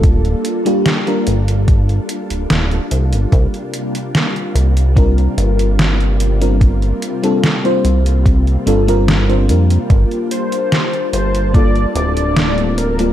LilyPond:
<<
  \new Staff \with { instrumentName = "Soft synth lead" } { \time 4/4 \key g \minor \tempo 4 = 73 r1 | r1 | r1 | r8 c''4 c''8 d''8 d''4 bes'8 | }
  \new Staff \with { instrumentName = "FM electric piano" } { \time 4/4 \key g \minor <g bes d' f' a'>8. <g bes d' f' g'>8 <g bes d' f' bes'>16 r2 r8 | r2 <g c' d' f' bes'>4.~ <g c' d' f' bes'>16 <g c' d' f' bes'>16~ | <g c' d' f' bes'>8. <g c' d' f' a'>8 <g c' d' f' c''>16 r4 <g c' d' f' a'>16 <g c' d' f' bes'>8 <g c' d' f' c''>16 <g bes d' f' bes'>8~ | <g bes d' f' bes'>2 <g bes d' f' a'>4.~ <g bes d' f' a'>16 <g bes d' f' bes'>16 | }
  \new Staff \with { instrumentName = "String machine" } { \time 4/4 \key g \minor << { <g bes f' a'>1 | <c bes>1~ | <c bes>1 | <bes a''>1 | } \\ { d'1~ | d'1 | c'1 | d'1 | } >> }
  \new Staff \with { instrumentName = "Analog synth bass" } { \clef bass \time 4/4 \key g \minor d,,8 r4 g,,4 r16 d,,16 d,,16 r16 c,16 g,,16 | c,16 r4 r16 c,4 g,,4.~ | g,,8 r4 c,4 g,,4 f,16 r16 | g,,16 r4 r16 g,,4 d,,4. | }
  \new DrumStaff \with { instrumentName = "Drums" } \drummode { \time 4/4 <hh bd>16 hh16 hh16 hh16 <hh sn>16 hh16 hh16 hh16 <hh bd>16 hh16 hh16 hh16 <hh sn>16 hh16 hh16 hh16 | <hh bd>16 hh16 hh16 hh16 <hh sn>16 hh16 hh16 hh16 <hh bd>16 hh16 hh16 hh16 <hh sn>16 hh16 hh16 hh16 | <hh bd>16 hh16 hh16 hh16 <hh sn>16 hh16 hh16 hh16 <hh bd>16 hh16 hh16 hh16 <hh sn>16 hh16 hh16 hh16 | <hh bd>16 hh16 hh16 hh16 <hh sn>16 hh16 hh16 hh16 <hh bd>16 hh16 hh16 hh16 <hh sn>16 hh16 hh16 hh16 | }
>>